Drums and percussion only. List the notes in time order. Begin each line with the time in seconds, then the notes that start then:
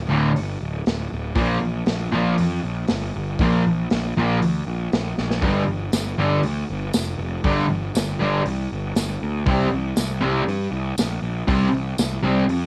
0.36 open hi-hat
0.86 snare, open hi-hat
1.36 kick, open hi-hat
1.86 snare, open hi-hat
2.38 open hi-hat
2.87 snare, open hi-hat
3.39 kick, open hi-hat
3.90 snare, open hi-hat
4.42 open hi-hat
4.92 snare, open hi-hat
5.18 snare
5.31 snare
5.42 kick, open hi-hat
5.92 snare, open hi-hat, tambourine
6.43 open hi-hat
6.93 snare, open hi-hat, tambourine
7.44 kick, open hi-hat
7.95 snare, open hi-hat, tambourine
8.46 open hi-hat
8.95 snare, open hi-hat, tambourine
9.47 kick, open hi-hat
9.96 snare, open hi-hat, tambourine
10.48 open hi-hat
10.98 snare, open hi-hat, tambourine
11.48 kick, open hi-hat
11.98 snare, open hi-hat, tambourine
12.49 open hi-hat